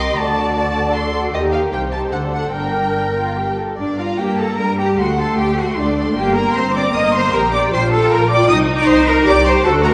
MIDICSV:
0, 0, Header, 1, 6, 480
1, 0, Start_track
1, 0, Key_signature, -2, "minor"
1, 0, Tempo, 386349
1, 227, Time_signature, 3, 2, 24, 8
1, 2151, Tempo, 412088
1, 4551, Tempo, 397614
1, 6951, Tempo, 387847
1, 12098, End_track
2, 0, Start_track
2, 0, Title_t, "Violin section"
2, 0, Program_c, 0, 48
2, 0, Note_on_c, 0, 84, 62
2, 229, Note_on_c, 0, 81, 71
2, 230, Note_off_c, 0, 84, 0
2, 685, Note_off_c, 0, 81, 0
2, 700, Note_on_c, 0, 81, 67
2, 1173, Note_off_c, 0, 81, 0
2, 1180, Note_on_c, 0, 84, 63
2, 1423, Note_off_c, 0, 84, 0
2, 1663, Note_on_c, 0, 75, 66
2, 1760, Note_off_c, 0, 75, 0
2, 1893, Note_on_c, 0, 77, 65
2, 1993, Note_off_c, 0, 77, 0
2, 2152, Note_on_c, 0, 79, 64
2, 2245, Note_off_c, 0, 79, 0
2, 2375, Note_on_c, 0, 81, 61
2, 2469, Note_off_c, 0, 81, 0
2, 2605, Note_on_c, 0, 78, 57
2, 2698, Note_off_c, 0, 78, 0
2, 2842, Note_on_c, 0, 78, 58
2, 3076, Note_on_c, 0, 79, 61
2, 3084, Note_off_c, 0, 78, 0
2, 4274, Note_off_c, 0, 79, 0
2, 4780, Note_on_c, 0, 82, 41
2, 5259, Note_off_c, 0, 82, 0
2, 5279, Note_on_c, 0, 82, 41
2, 5730, Note_off_c, 0, 82, 0
2, 5745, Note_on_c, 0, 82, 41
2, 5984, Note_off_c, 0, 82, 0
2, 5984, Note_on_c, 0, 84, 42
2, 6205, Note_off_c, 0, 84, 0
2, 6220, Note_on_c, 0, 84, 44
2, 6695, Note_off_c, 0, 84, 0
2, 6717, Note_on_c, 0, 84, 44
2, 7180, Note_off_c, 0, 84, 0
2, 7195, Note_on_c, 0, 84, 46
2, 7433, Note_off_c, 0, 84, 0
2, 7673, Note_on_c, 0, 82, 50
2, 8144, Note_off_c, 0, 82, 0
2, 8158, Note_on_c, 0, 82, 53
2, 8630, Note_off_c, 0, 82, 0
2, 8644, Note_on_c, 0, 82, 53
2, 8882, Note_off_c, 0, 82, 0
2, 8895, Note_on_c, 0, 79, 54
2, 9117, Note_off_c, 0, 79, 0
2, 9132, Note_on_c, 0, 79, 55
2, 9582, Note_off_c, 0, 79, 0
2, 9597, Note_on_c, 0, 79, 59
2, 10057, Note_off_c, 0, 79, 0
2, 10072, Note_on_c, 0, 79, 64
2, 10312, Note_off_c, 0, 79, 0
2, 10561, Note_on_c, 0, 82, 62
2, 11015, Note_off_c, 0, 82, 0
2, 11030, Note_on_c, 0, 82, 57
2, 11501, Note_off_c, 0, 82, 0
2, 11532, Note_on_c, 0, 82, 55
2, 11752, Note_on_c, 0, 78, 57
2, 11757, Note_off_c, 0, 82, 0
2, 11973, Note_off_c, 0, 78, 0
2, 11987, Note_on_c, 0, 78, 56
2, 12098, Note_off_c, 0, 78, 0
2, 12098, End_track
3, 0, Start_track
3, 0, Title_t, "Violin section"
3, 0, Program_c, 1, 48
3, 0, Note_on_c, 1, 67, 46
3, 0, Note_on_c, 1, 70, 46
3, 225, Note_off_c, 1, 67, 0
3, 227, Note_off_c, 1, 70, 0
3, 242, Note_on_c, 1, 66, 50
3, 245, Note_on_c, 1, 69, 47
3, 461, Note_off_c, 1, 66, 0
3, 476, Note_on_c, 1, 66, 47
3, 707, Note_off_c, 1, 69, 0
3, 722, Note_on_c, 1, 69, 48
3, 1184, Note_off_c, 1, 69, 0
3, 1199, Note_on_c, 1, 74, 47
3, 1648, Note_off_c, 1, 66, 0
3, 1670, Note_on_c, 1, 67, 48
3, 1673, Note_on_c, 1, 70, 44
3, 1674, Note_off_c, 1, 74, 0
3, 2152, Note_off_c, 1, 67, 0
3, 2154, Note_off_c, 1, 70, 0
3, 2159, Note_on_c, 1, 72, 43
3, 2162, Note_on_c, 1, 63, 41
3, 2614, Note_on_c, 1, 62, 44
3, 2624, Note_off_c, 1, 63, 0
3, 3088, Note_off_c, 1, 62, 0
3, 3100, Note_off_c, 1, 72, 0
3, 3101, Note_on_c, 1, 70, 38
3, 3102, Note_on_c, 1, 62, 43
3, 3529, Note_off_c, 1, 70, 0
3, 3530, Note_off_c, 1, 62, 0
3, 3586, Note_on_c, 1, 62, 44
3, 3680, Note_off_c, 1, 62, 0
3, 3816, Note_on_c, 1, 65, 51
3, 4055, Note_off_c, 1, 65, 0
3, 4061, Note_on_c, 1, 67, 45
3, 4302, Note_on_c, 1, 69, 45
3, 4307, Note_off_c, 1, 67, 0
3, 4538, Note_on_c, 1, 74, 56
3, 4547, Note_off_c, 1, 69, 0
3, 4770, Note_off_c, 1, 74, 0
3, 4790, Note_on_c, 1, 77, 52
3, 5028, Note_on_c, 1, 79, 49
3, 5034, Note_off_c, 1, 77, 0
3, 5257, Note_on_c, 1, 81, 57
3, 5271, Note_off_c, 1, 79, 0
3, 5504, Note_off_c, 1, 81, 0
3, 5521, Note_on_c, 1, 82, 55
3, 5752, Note_off_c, 1, 82, 0
3, 5757, Note_on_c, 1, 79, 52
3, 5852, Note_off_c, 1, 79, 0
3, 5995, Note_on_c, 1, 78, 58
3, 6230, Note_off_c, 1, 78, 0
3, 6235, Note_on_c, 1, 81, 60
3, 6474, Note_off_c, 1, 81, 0
3, 6476, Note_on_c, 1, 79, 58
3, 6708, Note_off_c, 1, 79, 0
3, 6709, Note_on_c, 1, 78, 57
3, 6805, Note_off_c, 1, 78, 0
3, 6950, Note_on_c, 1, 74, 55
3, 7424, Note_on_c, 1, 79, 69
3, 7427, Note_off_c, 1, 74, 0
3, 7667, Note_off_c, 1, 79, 0
3, 7672, Note_on_c, 1, 82, 67
3, 7887, Note_on_c, 1, 84, 68
3, 7913, Note_off_c, 1, 82, 0
3, 8147, Note_off_c, 1, 84, 0
3, 8148, Note_on_c, 1, 86, 70
3, 8391, Note_on_c, 1, 87, 73
3, 8392, Note_off_c, 1, 86, 0
3, 8631, Note_on_c, 1, 84, 73
3, 8639, Note_off_c, 1, 87, 0
3, 8879, Note_on_c, 1, 82, 71
3, 8880, Note_off_c, 1, 84, 0
3, 9110, Note_on_c, 1, 86, 81
3, 9124, Note_off_c, 1, 82, 0
3, 9209, Note_off_c, 1, 86, 0
3, 9368, Note_on_c, 1, 84, 74
3, 9465, Note_off_c, 1, 84, 0
3, 9584, Note_on_c, 1, 81, 76
3, 9832, Note_off_c, 1, 81, 0
3, 9834, Note_on_c, 1, 82, 68
3, 10067, Note_on_c, 1, 86, 79
3, 10080, Note_off_c, 1, 82, 0
3, 10295, Note_on_c, 1, 87, 86
3, 10310, Note_off_c, 1, 86, 0
3, 10394, Note_off_c, 1, 87, 0
3, 10645, Note_on_c, 1, 86, 74
3, 10759, Note_on_c, 1, 84, 81
3, 10779, Note_off_c, 1, 86, 0
3, 11004, Note_on_c, 1, 82, 82
3, 11016, Note_off_c, 1, 84, 0
3, 11103, Note_off_c, 1, 82, 0
3, 11250, Note_on_c, 1, 86, 93
3, 11497, Note_off_c, 1, 86, 0
3, 11503, Note_on_c, 1, 84, 66
3, 11600, Note_off_c, 1, 84, 0
3, 11724, Note_on_c, 1, 81, 95
3, 11823, Note_off_c, 1, 81, 0
3, 11973, Note_on_c, 1, 82, 80
3, 12071, Note_off_c, 1, 82, 0
3, 12098, End_track
4, 0, Start_track
4, 0, Title_t, "Cello section"
4, 0, Program_c, 2, 48
4, 0, Note_on_c, 2, 48, 49
4, 179, Note_off_c, 2, 48, 0
4, 234, Note_on_c, 2, 50, 52
4, 1667, Note_on_c, 2, 51, 45
4, 1670, Note_off_c, 2, 50, 0
4, 2141, Note_off_c, 2, 51, 0
4, 2151, Note_on_c, 2, 48, 49
4, 2609, Note_off_c, 2, 48, 0
4, 2620, Note_on_c, 2, 50, 42
4, 3087, Note_off_c, 2, 50, 0
4, 3096, Note_on_c, 2, 43, 42
4, 4284, Note_off_c, 2, 43, 0
4, 4546, Note_on_c, 2, 62, 53
4, 4774, Note_off_c, 2, 62, 0
4, 4797, Note_on_c, 2, 65, 57
4, 5037, Note_off_c, 2, 65, 0
4, 5037, Note_on_c, 2, 67, 59
4, 5276, Note_off_c, 2, 67, 0
4, 5276, Note_on_c, 2, 69, 65
4, 5510, Note_on_c, 2, 70, 67
4, 5514, Note_off_c, 2, 69, 0
4, 5746, Note_off_c, 2, 70, 0
4, 5754, Note_on_c, 2, 67, 64
4, 5989, Note_off_c, 2, 67, 0
4, 5993, Note_on_c, 2, 66, 67
4, 6234, Note_off_c, 2, 66, 0
4, 6236, Note_on_c, 2, 69, 66
4, 6465, Note_on_c, 2, 67, 71
4, 6470, Note_off_c, 2, 69, 0
4, 6703, Note_off_c, 2, 67, 0
4, 6710, Note_on_c, 2, 66, 74
4, 6948, Note_off_c, 2, 66, 0
4, 6949, Note_on_c, 2, 62, 67
4, 7432, Note_on_c, 2, 67, 70
4, 7436, Note_off_c, 2, 62, 0
4, 7671, Note_off_c, 2, 67, 0
4, 7671, Note_on_c, 2, 70, 79
4, 7918, Note_off_c, 2, 70, 0
4, 7928, Note_on_c, 2, 72, 86
4, 8167, Note_off_c, 2, 72, 0
4, 8169, Note_on_c, 2, 74, 87
4, 8264, Note_off_c, 2, 74, 0
4, 8402, Note_on_c, 2, 75, 84
4, 8640, Note_off_c, 2, 75, 0
4, 8651, Note_on_c, 2, 72, 89
4, 8885, Note_off_c, 2, 72, 0
4, 8887, Note_on_c, 2, 70, 77
4, 9128, Note_off_c, 2, 70, 0
4, 9129, Note_on_c, 2, 74, 83
4, 9365, Note_off_c, 2, 74, 0
4, 9365, Note_on_c, 2, 72, 100
4, 9604, Note_off_c, 2, 72, 0
4, 9609, Note_on_c, 2, 69, 93
4, 9845, Note_off_c, 2, 69, 0
4, 9849, Note_on_c, 2, 70, 80
4, 10084, Note_on_c, 2, 74, 107
4, 10087, Note_off_c, 2, 70, 0
4, 10319, Note_off_c, 2, 74, 0
4, 10324, Note_on_c, 2, 75, 92
4, 10423, Note_off_c, 2, 75, 0
4, 10688, Note_on_c, 2, 74, 92
4, 10801, Note_off_c, 2, 74, 0
4, 10801, Note_on_c, 2, 72, 103
4, 11033, Note_off_c, 2, 72, 0
4, 11035, Note_on_c, 2, 70, 102
4, 11270, Note_on_c, 2, 74, 102
4, 11274, Note_off_c, 2, 70, 0
4, 11512, Note_off_c, 2, 74, 0
4, 11516, Note_on_c, 2, 72, 94
4, 11749, Note_on_c, 2, 69, 88
4, 11753, Note_off_c, 2, 72, 0
4, 11984, Note_on_c, 2, 70, 83
4, 11988, Note_off_c, 2, 69, 0
4, 12098, Note_off_c, 2, 70, 0
4, 12098, End_track
5, 0, Start_track
5, 0, Title_t, "Viola section"
5, 0, Program_c, 3, 48
5, 0, Note_on_c, 3, 75, 64
5, 203, Note_off_c, 3, 75, 0
5, 218, Note_on_c, 3, 74, 66
5, 1177, Note_on_c, 3, 69, 54
5, 1179, Note_off_c, 3, 74, 0
5, 1663, Note_off_c, 3, 69, 0
5, 1668, Note_on_c, 3, 67, 60
5, 2600, Note_off_c, 3, 67, 0
5, 2629, Note_on_c, 3, 69, 48
5, 3092, Note_off_c, 3, 69, 0
5, 3101, Note_on_c, 3, 70, 51
5, 4311, Note_off_c, 3, 70, 0
5, 5028, Note_on_c, 3, 58, 54
5, 5476, Note_off_c, 3, 58, 0
5, 5511, Note_on_c, 3, 55, 52
5, 5975, Note_on_c, 3, 57, 66
5, 5992, Note_off_c, 3, 55, 0
5, 7415, Note_on_c, 3, 58, 67
5, 7427, Note_off_c, 3, 57, 0
5, 7908, Note_on_c, 3, 60, 69
5, 7910, Note_off_c, 3, 58, 0
5, 8395, Note_on_c, 3, 58, 62
5, 8398, Note_off_c, 3, 60, 0
5, 8876, Note_on_c, 3, 67, 75
5, 8883, Note_off_c, 3, 58, 0
5, 9364, Note_off_c, 3, 67, 0
5, 9372, Note_on_c, 3, 65, 84
5, 10308, Note_off_c, 3, 65, 0
5, 10330, Note_on_c, 3, 63, 94
5, 11264, Note_on_c, 3, 67, 77
5, 11277, Note_off_c, 3, 63, 0
5, 11735, Note_on_c, 3, 66, 83
5, 11737, Note_off_c, 3, 67, 0
5, 12098, Note_off_c, 3, 66, 0
5, 12098, End_track
6, 0, Start_track
6, 0, Title_t, "Double bass section"
6, 0, Program_c, 4, 48
6, 0, Note_on_c, 4, 36, 54
6, 175, Note_off_c, 4, 36, 0
6, 227, Note_on_c, 4, 38, 51
6, 1666, Note_off_c, 4, 38, 0
6, 1667, Note_on_c, 4, 39, 52
6, 2141, Note_off_c, 4, 39, 0
6, 2152, Note_on_c, 4, 36, 44
6, 2609, Note_off_c, 4, 36, 0
6, 2621, Note_on_c, 4, 38, 47
6, 3087, Note_off_c, 4, 38, 0
6, 3097, Note_on_c, 4, 31, 46
6, 4285, Note_off_c, 4, 31, 0
6, 4543, Note_on_c, 4, 43, 57
6, 4975, Note_off_c, 4, 43, 0
6, 5033, Note_on_c, 4, 43, 50
6, 5456, Note_off_c, 4, 43, 0
6, 5502, Note_on_c, 4, 43, 51
6, 5930, Note_off_c, 4, 43, 0
6, 5980, Note_on_c, 4, 38, 59
6, 6410, Note_off_c, 4, 38, 0
6, 6463, Note_on_c, 4, 38, 51
6, 6888, Note_off_c, 4, 38, 0
6, 6942, Note_on_c, 4, 38, 52
6, 7375, Note_off_c, 4, 38, 0
6, 7436, Note_on_c, 4, 31, 59
6, 7864, Note_off_c, 4, 31, 0
6, 7922, Note_on_c, 4, 31, 57
6, 8349, Note_off_c, 4, 31, 0
6, 8397, Note_on_c, 4, 31, 64
6, 8827, Note_off_c, 4, 31, 0
6, 8882, Note_on_c, 4, 34, 72
6, 9310, Note_off_c, 4, 34, 0
6, 9367, Note_on_c, 4, 34, 70
6, 9793, Note_off_c, 4, 34, 0
6, 9847, Note_on_c, 4, 34, 69
6, 10268, Note_off_c, 4, 34, 0
6, 10323, Note_on_c, 4, 36, 81
6, 10743, Note_off_c, 4, 36, 0
6, 10804, Note_on_c, 4, 36, 69
6, 11221, Note_off_c, 4, 36, 0
6, 11276, Note_on_c, 4, 36, 79
6, 11697, Note_off_c, 4, 36, 0
6, 11754, Note_on_c, 4, 38, 84
6, 12098, Note_off_c, 4, 38, 0
6, 12098, End_track
0, 0, End_of_file